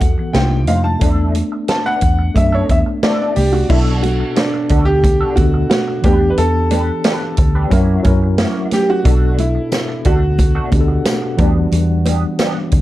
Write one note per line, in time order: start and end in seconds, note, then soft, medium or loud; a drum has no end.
0.00 0.14 E2 medium
0.00 0.36 E3 medium
0.00 0.37 B3 medium
0.00 0.37 F#4 medium
0.00 0.36 A4 medium
0.00 0.37 F#5 medium
0.00 muted clean electric guitar stroke soft
0.00 kick medium
0.00 closed hi-hat medium
0.00 muted conga soft
0.18 muted clean electric guitar stroke soft
0.33 0.68 C2 loud
0.33 0.87 C3 medium
0.33 0.88 A#3 medium
0.33 0.88 D4 medium
0.33 0.89 D#4 medium
0.33 0.89 F4 medium
0.33 0.69 G5 medium
0.33 muted clean electric guitar stroke soft
0.33 snare loud
0.33 closed hi-hat medium
0.33 high conga medium
0.67 0.94 F2 loud
0.67 0.81 D#4 soft
0.67 0.82 F4 medium
0.67 0.82 C5 soft
0.67 0.84 F5 medium
0.67 closed hi-hat medium
0.67 high conga medium
0.84 1.16 A5 medium
0.84 muted clean electric guitar stroke soft
0.84 high conga soft
0.99 1.41 E2 loud
0.99 2.03 A3 medium
0.99 2.04 B3 medium
0.99 1.33 D4 medium
0.99 2.05 D4 medium
0.99 1.33 E4 medium
0.99 1.33 A4 medium
0.99 kick loud
0.99 closed hi-hat medium
1.35 closed hi-hat medium
1.35 muted conga soft
1.52 muted clean electric guitar stroke soft
1.68 1.86 A5 medium
1.68 muted clean electric guitar stroke soft
1.68 snare loud
1.68 closed hi-hat medium
1.68 high conga medium
1.86 2.01 D4 medium
1.86 2.02 E4 medium
1.86 2.02 B4 medium
1.86 2.33 F#5 loud
2.01 2.28 E2 loud
2.01 muted clean electric guitar stroke soft
2.01 kick medium
2.01 closed hi-hat medium
2.19 muted clean electric guitar stroke soft
2.34 2.62 F#2 medium
2.34 3.38 A3 medium
2.34 3.39 B3 medium
2.34 3.40 D4 medium
2.34 2.54 E5 loud
2.34 muted clean electric guitar stroke soft
2.34 kick medium
2.34 closed hi-hat medium
2.34 muted conga soft
2.52 2.68 D4 medium
2.52 2.69 E4 medium
2.52 2.69 A4 medium
2.52 2.69 C#5 medium
2.69 2.82 E2 medium
2.69 2.78 E5 medium
2.69 muted clean electric guitar stroke soft
2.69 kick medium
2.69 closed hi-hat medium
2.69 muted conga soft
2.86 muted clean electric guitar stroke soft
3.03 3.34 D4 medium
3.03 3.34 E4 medium
3.03 3.34 A4 medium
3.03 3.19 D5 medium
3.03 snare loud
3.03 closed hi-hat medium
3.03 high conga medium
3.22 3.67 D5 medium
3.36 3.63 C2 medium
3.36 3.52 G4 medium
3.36 muted clean electric guitar stroke soft
3.36 open hi-hat medium
3.36 high conga medium
3.52 3.70 F#4 medium
3.52 muted clean electric guitar stroke soft
3.52 high conga soft
3.68 4.22 B1 loud
3.68 4.72 B2 medium
3.68 4.72 B3 medium
3.68 4.01 D4 medium
3.68 4.73 D4 medium
3.68 3.77 E4 loud
3.68 4.01 F#4 medium
3.68 4.01 A4 medium
3.68 4.74 A4 medium
3.68 kick loud
3.68 crash loud
4.03 4.38 F#4 medium
4.03 closed hi-hat medium
4.03 muted conga soft
4.20 muted clean electric guitar stroke soft
4.36 4.83 D4 medium
4.36 muted clean electric guitar stroke soft
4.36 snare loud
4.36 closed hi-hat medium
4.36 high conga medium
4.54 muted clean electric guitar stroke soft
4.69 5.22 D2 medium
4.69 4.87 D4 medium
4.69 4.87 F#4 medium
4.69 4.86 A4 medium
4.69 kick medium
4.69 closed hi-hat medium
4.85 5.38 G4 loud
4.85 muted clean electric guitar stroke soft
5.04 muted clean electric guitar stroke soft
5.04 kick medium
5.04 closed hi-hat medium
5.04 muted conga soft
5.21 5.37 D4 medium
5.21 5.37 F#4 medium
5.21 5.37 A4 medium
5.35 5.64 D2 medium
5.35 6.03 B2 medium
5.35 6.02 B3 medium
5.35 6.03 D4 medium
5.35 5.68 F#4 medium
5.35 6.05 A4 medium
5.35 muted clean electric guitar stroke soft
5.35 kick medium
5.35 closed hi-hat medium
5.35 muted conga medium
5.35 low conga medium
5.54 muted clean electric guitar stroke soft
5.70 6.01 F#4 loud
5.70 muted clean electric guitar stroke soft
5.70 snare loud
5.70 closed hi-hat medium
5.70 high conga medium
5.88 muted clean electric guitar stroke soft
6.02 6.30 E2 loud
6.02 7.10 E3 medium
6.02 7.11 B3 medium
6.02 6.21 D4 medium
6.02 7.11 D4 medium
6.02 6.29 G4 medium
6.02 6.20 G4 medium
6.02 7.12 G4 medium
6.02 6.20 B4 medium
6.02 kick loud
6.02 closed hi-hat medium
6.02 high conga medium
6.21 muted clean electric guitar stroke soft
6.30 6.37 B4 medium
6.38 6.90 E2 loud
6.38 7.68 A4 loud
6.38 closed hi-hat medium
6.38 muted conga soft
6.71 6.88 D4 medium
6.71 6.88 G4 medium
6.71 6.88 B4 medium
6.71 closed hi-hat medium
6.71 muted conga medium
7.04 7.21 D4 medium
7.04 7.21 G4 medium
7.04 7.22 B4 medium
7.04 snare loud
7.04 closed hi-hat medium
7.04 high conga medium
7.37 7.64 D2 loud
7.37 muted clean electric guitar stroke soft
7.37 kick loud
7.37 closed hi-hat medium
7.55 7.69 D4 soft
7.55 7.68 G4 medium
7.55 7.68 B4 medium
7.69 7.98 F#2 loud
7.69 7.97 F#3 medium
7.69 8.03 A#3 medium
7.69 7.98 C#4 medium
7.69 7.98 E4 medium
7.69 8.03 E4 medium
7.69 8.03 F#4 medium
7.69 7.99 A#4 loud
7.69 kick medium
7.69 closed hi-hat medium
7.69 muted conga medium
8.03 8.44 F#2 medium
8.03 8.81 F#3 medium
8.03 8.82 C#4 medium
8.03 8.82 E4 medium
8.03 8.83 A#4 medium
8.03 muted clean electric guitar stroke soft
8.03 kick medium
8.03 closed hi-hat medium
8.03 muted conga soft
8.23 muted clean electric guitar stroke soft
8.38 8.69 A#3 medium
8.38 8.70 E4 medium
8.38 8.70 F#4 medium
8.38 snare loud
8.38 closed hi-hat medium
8.38 high conga medium
8.71 8.90 G4 loud
8.71 muted clean electric guitar stroke soft
8.71 snare soft
8.71 closed hi-hat medium
8.71 high conga medium
8.89 9.41 F#4 loud
8.89 muted clean electric guitar stroke soft
9.03 9.57 B1 loud
9.03 10.07 B2 medium
9.03 9.36 A3 medium
9.03 10.07 B3 medium
9.03 9.36 D4 medium
9.03 10.08 D4 medium
9.03 9.36 F#4 medium
9.03 kick loud
9.03 closed hi-hat medium
9.03 muted conga soft
9.07 10.09 A4 medium
9.38 10.08 E4 medium
9.38 closed hi-hat medium
9.38 muted conga soft
9.55 muted clean electric guitar stroke soft
9.72 muted clean electric guitar stroke soft
9.72 snare medium
9.72 closed hi-hat medium
9.72 tambourine medium
9.72 high conga medium
9.88 muted clean electric guitar stroke soft
10.05 10.58 D2 loud
10.05 10.22 A3 medium
10.05 10.22 D4 loud
10.05 12.81 F#4 loud
10.05 10.21 F#4 medium
10.05 kick medium
10.05 closed hi-hat medium
10.22 muted clean electric guitar stroke soft
10.39 muted clean electric guitar stroke soft
10.39 kick medium
10.39 closed hi-hat medium
10.39 muted conga medium
10.55 10.70 A3 medium
10.55 10.71 D4 medium
10.55 10.71 F#4 medium
10.70 10.98 D2 medium
10.70 11.38 B2 medium
10.70 11.37 B3 medium
10.70 11.38 D4 medium
10.70 10.80 G4 medium
10.70 muted clean electric guitar stroke soft
10.70 kick medium
10.70 closed hi-hat medium
10.70 muted conga soft
10.70 low conga medium
10.81 11.43 A4 medium
10.88 muted clean electric guitar stroke soft
11.05 muted clean electric guitar stroke soft
11.05 snare loud
11.05 closed hi-hat medium
11.05 tambourine medium
11.05 high conga medium
11.22 muted clean electric guitar stroke medium
11.37 11.65 E2 loud
11.37 12.45 E3 loud
11.37 11.55 B3 medium
11.37 12.46 B3 medium
11.37 11.56 D4 medium
11.37 12.46 D4 medium
11.37 11.55 G4 medium
11.37 kick loud
11.37 closed hi-hat medium
11.37 high conga medium
11.41 12.47 G3 loud
11.56 muted clean electric guitar stroke soft
11.72 12.24 E2 loud
11.72 closed hi-hat medium
11.72 muted conga soft
12.06 12.22 B3 medium
12.06 12.23 D4 medium
12.06 12.23 G4 medium
12.06 closed hi-hat medium
12.06 muted conga medium
12.39 12.56 B3 medium
12.39 12.56 D4 medium
12.39 12.56 G4 medium
12.39 snare loud
12.39 closed hi-hat medium
12.39 tambourine medium
12.39 high conga medium
12.72 12.81 D2 loud
12.72 muted clean electric guitar stroke soft
12.72 kick medium
12.72 closed hi-hat medium